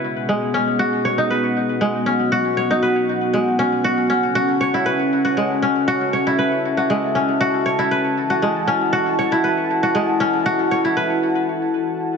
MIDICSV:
0, 0, Header, 1, 3, 480
1, 0, Start_track
1, 0, Tempo, 508475
1, 31, Time_signature, 4, 2, 24, 8
1, 11489, End_track
2, 0, Start_track
2, 0, Title_t, "Analog synth pad"
2, 0, Program_c, 0, 89
2, 29, Note_on_c, 0, 68, 67
2, 29, Note_on_c, 0, 78, 80
2, 31, Note_on_c, 0, 59, 70
2, 1931, Note_off_c, 0, 68, 0
2, 1953, Note_on_c, 0, 66, 71
2, 3833, Note_off_c, 0, 59, 0
2, 3853, Note_off_c, 0, 66, 0
2, 3875, Note_on_c, 0, 61, 71
2, 3878, Note_on_c, 0, 81, 68
2, 5752, Note_off_c, 0, 78, 0
2, 5794, Note_on_c, 0, 76, 81
2, 7675, Note_off_c, 0, 61, 0
2, 7694, Note_off_c, 0, 76, 0
2, 7709, Note_on_c, 0, 78, 81
2, 7710, Note_on_c, 0, 64, 74
2, 11489, Note_off_c, 0, 64, 0
2, 11489, Note_off_c, 0, 78, 0
2, 11489, Note_off_c, 0, 81, 0
2, 11489, End_track
3, 0, Start_track
3, 0, Title_t, "Kora"
3, 0, Program_c, 1, 46
3, 0, Note_on_c, 1, 61, 81
3, 0, Note_on_c, 1, 64, 76
3, 0, Note_on_c, 1, 66, 86
3, 0, Note_on_c, 1, 71, 73
3, 0, Note_on_c, 1, 73, 80
3, 272, Note_on_c, 1, 56, 77
3, 507, Note_off_c, 1, 61, 0
3, 511, Note_on_c, 1, 61, 81
3, 635, Note_off_c, 1, 73, 0
3, 693, Note_off_c, 1, 66, 0
3, 749, Note_on_c, 1, 66, 91
3, 951, Note_off_c, 1, 71, 0
3, 991, Note_on_c, 1, 73, 83
3, 1115, Note_on_c, 1, 63, 74
3, 1172, Note_off_c, 1, 64, 0
3, 1232, Note_on_c, 1, 71, 70
3, 1697, Note_off_c, 1, 56, 0
3, 1708, Note_on_c, 1, 56, 74
3, 1943, Note_off_c, 1, 61, 0
3, 1947, Note_on_c, 1, 61, 80
3, 2074, Note_off_c, 1, 73, 0
3, 2129, Note_off_c, 1, 66, 0
3, 2189, Note_on_c, 1, 66, 96
3, 2392, Note_off_c, 1, 71, 0
3, 2427, Note_on_c, 1, 73, 78
3, 2550, Note_off_c, 1, 63, 0
3, 2554, Note_on_c, 1, 63, 73
3, 2667, Note_on_c, 1, 71, 70
3, 3137, Note_off_c, 1, 56, 0
3, 3148, Note_on_c, 1, 56, 66
3, 3385, Note_off_c, 1, 61, 0
3, 3389, Note_on_c, 1, 61, 78
3, 3509, Note_off_c, 1, 73, 0
3, 3569, Note_off_c, 1, 66, 0
3, 3629, Note_on_c, 1, 66, 95
3, 3828, Note_off_c, 1, 71, 0
3, 3863, Note_off_c, 1, 61, 0
3, 3867, Note_on_c, 1, 61, 81
3, 3918, Note_off_c, 1, 56, 0
3, 4086, Note_off_c, 1, 63, 0
3, 4105, Note_off_c, 1, 66, 0
3, 4109, Note_on_c, 1, 66, 100
3, 4349, Note_on_c, 1, 73, 82
3, 4476, Note_on_c, 1, 64, 73
3, 4586, Note_on_c, 1, 71, 74
3, 4949, Note_off_c, 1, 66, 0
3, 4953, Note_on_c, 1, 66, 70
3, 5069, Note_on_c, 1, 56, 69
3, 5306, Note_off_c, 1, 61, 0
3, 5310, Note_on_c, 1, 61, 80
3, 5432, Note_off_c, 1, 73, 0
3, 5544, Note_off_c, 1, 66, 0
3, 5548, Note_on_c, 1, 66, 98
3, 5746, Note_off_c, 1, 71, 0
3, 5788, Note_on_c, 1, 73, 76
3, 5914, Note_off_c, 1, 64, 0
3, 5917, Note_on_c, 1, 64, 75
3, 6029, Note_on_c, 1, 71, 74
3, 6390, Note_off_c, 1, 66, 0
3, 6394, Note_on_c, 1, 66, 70
3, 6501, Note_off_c, 1, 56, 0
3, 6512, Note_on_c, 1, 56, 73
3, 6747, Note_off_c, 1, 61, 0
3, 6751, Note_on_c, 1, 61, 80
3, 6871, Note_off_c, 1, 73, 0
3, 6987, Note_off_c, 1, 66, 0
3, 6991, Note_on_c, 1, 66, 94
3, 7189, Note_off_c, 1, 71, 0
3, 7229, Note_on_c, 1, 73, 83
3, 7348, Note_off_c, 1, 64, 0
3, 7352, Note_on_c, 1, 64, 74
3, 7469, Note_on_c, 1, 71, 73
3, 7758, Note_off_c, 1, 56, 0
3, 7831, Note_off_c, 1, 66, 0
3, 7835, Note_on_c, 1, 66, 74
3, 7952, Note_on_c, 1, 56, 75
3, 8185, Note_off_c, 1, 61, 0
3, 8189, Note_on_c, 1, 61, 82
3, 8311, Note_off_c, 1, 73, 0
3, 8423, Note_off_c, 1, 66, 0
3, 8427, Note_on_c, 1, 66, 94
3, 8630, Note_off_c, 1, 71, 0
3, 8673, Note_on_c, 1, 73, 81
3, 8795, Note_off_c, 1, 64, 0
3, 8798, Note_on_c, 1, 64, 75
3, 8910, Note_on_c, 1, 71, 70
3, 9276, Note_off_c, 1, 66, 0
3, 9280, Note_on_c, 1, 66, 76
3, 9379, Note_off_c, 1, 56, 0
3, 9390, Note_on_c, 1, 56, 74
3, 9627, Note_off_c, 1, 61, 0
3, 9631, Note_on_c, 1, 61, 84
3, 9755, Note_off_c, 1, 73, 0
3, 9868, Note_off_c, 1, 66, 0
3, 9872, Note_on_c, 1, 66, 100
3, 10071, Note_off_c, 1, 71, 0
3, 10114, Note_on_c, 1, 73, 81
3, 10235, Note_off_c, 1, 64, 0
3, 10239, Note_on_c, 1, 64, 74
3, 10353, Note_on_c, 1, 71, 77
3, 11196, Note_off_c, 1, 73, 0
3, 11252, Note_off_c, 1, 66, 0
3, 11272, Note_off_c, 1, 61, 0
3, 11489, Note_off_c, 1, 56, 0
3, 11489, Note_off_c, 1, 64, 0
3, 11489, Note_off_c, 1, 71, 0
3, 11489, End_track
0, 0, End_of_file